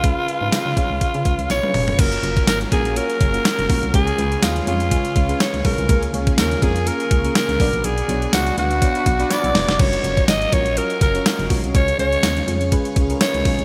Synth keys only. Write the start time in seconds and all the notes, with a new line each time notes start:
Already playing: C#3 C#4 F4 G#4 A#4 B4
0.03 C#4 F4 G#4 B4
0.41 C#4 F4 G#4 B4
0.76 C#4 F4 G#4 C#5
1.63 C#4 F4 G#4 B4
1.98 A#3 C#4 F4 F#4 A#4
2.23 A#3 C#4 F4 F#4 A#4
2.71 A#3 C#4 F4 F#4 A#4
2.96 A#3 C#4 F4 F#4 C#5
3.34 A#3 C#4 F4 F#4 A#4
3.69 A#3 C#4 F4 F#4 A#4
3.93 C#3 G#3 C#4 F4 G#4 C#5
4.18 G#3 C#4 F4 G#4 B4
4.66 G#3 C#4 F4 G#4 C#5
4.91 G#3 C#4 F4 G#4 C#5
5.29 G#3 C#4 F4 G#4 B4
5.64 G#3 C#4 F4 G#4 C#5
5.89 C#3 A#3 C#4 F4 G#4 A#4
6.13 A#3 C#4 F4 G#4 C#5
6.62 A#3 C#4 F4 G#4 A#4
6.86 A#3 C#4 F4 G#4 A#4
7.24 A#3 C#4 F4 G#4 A#4
7.60 B2 B3 D4 F#4 B4 D5
8.08 B3 D4 F#4 B4 C#5
8.57 B3 D4 F#4 B4 F5
8.81 B3 D4 F#4 B4 C#5
9.19 B3 D4 F#4 B4 D5
9.55 B3 D4 F#4 B4 D5
9.79 C#4 F4 F#4 A#4 C#5
10.03 C#4 F4 F#4 A#4 C#5
10.52 C#4 F4 F#4 A#4 C#5
10.77 C#4 F4 F#4 A#4 D#5
11.15 C#4 F4 F#4 A#4 C#5
11.50 C#4 F4 F#4 A#4 C#5
11.74 C#3 G#3 C#4 F4 G#4 C#5
11.98 G#3 C#4 F4 G#4 C#5
12.47 G#3 C#4 F4 G#4 C#5
12.72 G#3 C#4 F4 G#4 B4
13.09 G#3 C#4 F4 G#4 A#4
13.44 G#3 C#4 F4 G#4 C#5